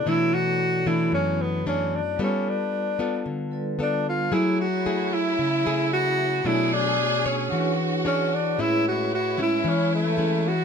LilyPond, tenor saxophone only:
\new Staff \with { instrumentName = "Tenor saxophone" } { \time 4/4 \key a \major \tempo 4 = 113 e'8 fis'4 e'8 cis'8 b8 cis'8 d'8 | cis'8 d'4. r4 d'8 f'8 | e'8 fis'4 e'4. fis'4 | e'8 d'4 cis'4 r8 cis'8 d'8 |
e'8 fis'8 fis'8 e'8 cis'8 a4 fis'8 | }